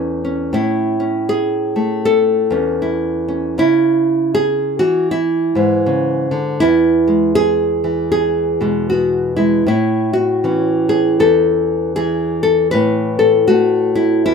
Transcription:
Already playing: E2 A3 C#4 E4
0.24 C#4
0.53 A2 E4
1.00 C#4
1.29 G#4
1.76 A3
2.05 A4
2.51 E2 C#4
2.82 E4
3.28 C#4
3.58 C#3 E4
4.35 G#4
4.79 E3 F#4
5.11 E4
5.55 G#2 E3
5.86 C#3
6.31 D3
6.60 E2 E4
7.07 G#3
7.35 G#4
7.84 E3
8.12 G#4
8.61 B2 G#3
8.90 B3 F#4
9.36 G#3 E4
9.67 A2 E4
10.13 F#4
10.44 E3 C#4
10.89 G#4
11.20 E2 A4
11.96 E3 G#4
12.43 A4
12.71 A2 B4
13.19 A4
13.48 A3 F#4
13.95 E4
14.26 E2 E4

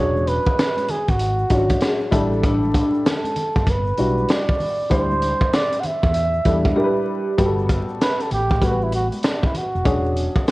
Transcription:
Already playing: E1 F#3 C#4 D4 G#4 C#5
0.17 high conga, shaker
0.27 B4, closed hi-hat, shaker
0.46 kick, shaker
0.58 snare, closed hi-hat, low conga, shaker
0.77 closed hi-hat, high conga, shaker
0.89 G#4, closed hi-hat, low conga, shaker
1.08 G#1 F#4, kick, closed hi-hat, shaker
1.20 closed hi-hat, shaker
1.39 shaker
1.50 G#1 F#3 C#4 D4 F4, kick, closed hi-hat, shaker
1.58 F#4
1.70 kick, closed hi-hat, high conga, shaker
1.81 G#4, snare, closed hi-hat, shaker
2.01 shaker
2.11 A1 G3 D4 E4 A4, kick, closed hi-hat, low conga, shaker
2.33 shaker
2.43 D4, kick, closed hi-hat, shaker
2.63 high conga, shaker
2.74 kick, closed hi-hat, shaker
2.94 shaker
3.06 A4, snare, closed hi-hat, low conga, shaker
3.24 closed hi-hat, high conga, shaker
3.36 closed hi-hat, low conga, shaker
3.56 G1, kick, shaker
3.67 B4, kick, closed hi-hat, shaker
3.86 shaker
3.97 B1 G3 D4 E4 F#4, closed hi-hat, shaker
4.17 high conga, shaker
4.28 D5, snare, closed hi-hat, shaker
4.49 kick, shaker
4.59 open hi-hat, low conga, shaker
4.80 shaker
4.90 D2 G3 D4 E4 C5, kick, closed hi-hat, shaker
5.11 high conga, shaker
5.22 closed hi-hat, high conga, shaker
5.41 kick, shaker
5.53 D5, snare, closed hi-hat, low conga, shaker
5.72 closed hi-hat, shaker
5.80 F#5, closed hi-hat, low conga, shaker
5.86 E5
6.03 E2, kick, shaker
6.14 closed hi-hat, shaker
6.33 shaker
6.45 E2 G3 D4 E4 A4, kick, closed hi-hat, shaker
6.65 kick, high conga, shaker
6.76 G3 D4 E4 G4 A#4
6.84 B4
7.38 G1 G3 B3 F#4 G4, kick, closed hi-hat, shaker
7.45 A4
7.59 shaker
7.69 kick, closed hi-hat
7.88 shaker
8.00 B4, snare, closed hi-hat, shaker
8.19 A4, closed hi-hat, shaker
8.31 A1 G4, closed hi-hat, low conga, shaker
8.51 kick, shaker
8.61 G3 B3 F#4 A4, kick, closed hi-hat, shaker
8.69 B4
8.81 E4, shaker
8.92 F#4, closed hi-hat, shaker
9.12 closed hi-hat, high conga, shaker
9.23 D4, snare, closed hi-hat, shaker
9.43 E4, kick, shaker
9.54 F#4, closed hi-hat, low conga, shaker
9.75 F1, shaker
9.84 E1 F#3 C#4 D4 G#4, kick, closed hi-hat, shaker
10.06 shaker
10.17 closed hi-hat, shaker
10.35 kick, shaker
10.47 snare, closed hi-hat, shaker

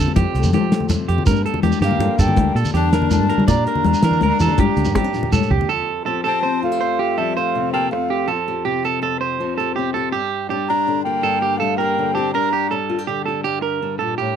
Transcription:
Already playing: F2 C3 F3 A3 C4 A4
0.00 G4
0.08 low conga
0.16 F2 G4, kick, closed hi-hat, high conga
0.34 C2 A3, closed hi-hat, shekere
0.43 F2, low conga, shekere
0.53 F3 C4 G4, closed hi-hat, high conga, shekere
0.64 low conga
0.72 A3, snare, closed hi-hat
0.80 low conga
0.89 C3 C4, muted clean electric guitar stroke, closed hi-hat, high conga, shekere
1.08 F2 G4, closed hi-hat, low conga
1.18 low conga
1.26 G2 G3 A#3 A#4, kick, closed hi-hat, high conga, shekere
1.31 D4, muted nylon-string guitar stroke
1.36 shekere
1.46 A#3 A4, closed hi-hat
1.54 low conga
1.63 E2 G3 D4 G4, closed hi-hat, high conga, low conga, shekere
1.72 shekere
1.81 G2 A#3 G4 F5, snare, closed hi-hat, low conga
1.86 A#3
1.91 low conga
1.99 G2 D3 D4, closed hi-hat, high conga
2.19 G2 G4 A4 G5, kick, closed hi-hat, shekere
2.23 A#3
2.28 low conga
2.36 D2 G2 G4, kick, closed hi-hat, high conga
2.55 A#2 A#3 A4, closed hi-hat, shekere
2.65 low conga, shekere
2.74 E2 G3 D4 G4 A5, closed hi-hat, shekere
2.83 low conga
2.93 A#3 A#4, snare, closed hi-hat
3.02 low conga
3.11 D3 D4 A5, closed hi-hat, high conga, shekere
3.20 G2
3.30 G4 A#4, closed hi-hat, low conga
3.38 G3, low conga
3.48 G2 A#2 D4 G4 D5 A#5, kick, closed hi-hat, high conga, low conga, shekere
3.67 A#3 A#4, closed hi-hat
3.75 low conga
3.85 E2 G3 D4, closed hi-hat, high conga, low conga
3.94 low conga, shekere
4.02 E3 A#3 A#4, snare, closed hi-hat, low conga
4.11 low conga, shekere
4.21 D2 D4 A#4, muted nylon-string guitar stroke, closed hi-hat, high conga
4.30 low conga
4.39 E3 G4 A4, closed hi-hat, low conga, shekere
4.48 low conga, shekere
4.58 G2 G4, kick, closed hi-hat, high conga, low conga
4.76 D2 A#3, closed hi-hat, shekere
4.85 G2, low conga, shekere
4.95 G3 C4 G4, kick, closed hi-hat, high conga
5.04 D4
5.13 A#2, snare, low conga, shekere
5.23 low conga
5.32 A2 A4, mid tom, high conga, shekere
5.43 shekere
5.50 C2 G4, floor tom, low conga
5.61 low conga
5.69 F2 A4
6.06 F3 C4 A4
6.24 G4 A4 A5
6.28 C4
6.43 C4 C5
6.63 A3 F4 F5
6.72 G4
6.81 F2 C5
6.99 G4
7.18 F3 G3 C4 A4 E5
7.36 A3 G4 C5 F5
7.55 C3 C4
7.72 A#3 G4 A4 G5
7.91 F2 A3 F5, muted clean electric guitar stroke
8.10 G4
8.28 F3 C4 A4
8.48 G4
8.65 C3 G4
8.84 G4 A4
9.02 F2 A4
9.21 C5
9.40 F3 C4
9.58 G4 A4
9.76 C3 C4 G4
9.94 G4 A4
10.12 G2 G4
10.50 G3 D4 G4
10.69 D4 G4 A#5
10.87 D3 D4
11.03 A#3 G4 G5
11.23 G2 A4
11.42 G4
11.58 G3 A3 A4 F5
11.62 D4
11.77 A#3 G4 A#4 G5
11.98 D3 D4
12.14 C4 G4 A5
12.33 G2 D4 A#4 A#5
12.53 G4
12.71 G3 D4 A4
12.89 F4
12.99 G4
13.07 D3 D4 G4
13.26 G4 A4
13.44 G2 G4
13.62 A#4
13.82 G3 D4
13.99 A#2 A4
14.18 A2 G4

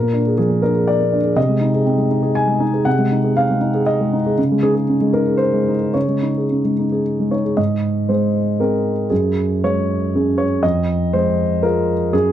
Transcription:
Already playing: A#2 A#4
0.02 A#3
0.13 D4
0.27 G#4
0.38 F3 G#4
0.50 A#3
0.62 D4 A#4
0.75 G#4
0.88 D5
1.00 A#3
1.13 D4
1.25 G#4
1.36 C3 D#5
1.49 G#3
1.61 D#4
1.74 G#4
1.85 C4
1.98 G#3
2.10 D#4
2.23 G#4
2.35 G#5
2.47 G#3
2.60 D#4
2.74 G#4
2.85 C3 F#5
2.99 G#3
3.11 D#4
3.24 G#4
3.37 C4 F5
3.50 G#3
3.61 D#4
3.74 G#4
3.86 D#5
4.01 G#3
4.13 D#4
4.26 G#4
4.38 C#3
4.52 G#3
4.63 D#4 G#4
4.75 G#4
4.89 C#4
5.01 G#3
5.13 D#4 A#4
5.27 G#4
5.37 C5
5.53 G#3
5.68 D#4
5.82 G#4
5.94 C#3 C#5
6.08 G#3
6.23 D#4
6.38 G#4
6.51 C#4
6.64 G#3
6.79 D#4
6.92 G#4
7.20 G#3
7.31 D#4 C#5
7.45 G#4
7.57 G#2 D#5
8.09 G#3 C5
8.60 C4 G#4 A#4
9.10 F#2 G#4
9.64 G#3 C#5
10.15 C#4 G#4
10.38 C#5
10.63 F2 D#5
11.13 G#3 C5
11.63 F4 G#4 A#4
12.13 F#2 G#4

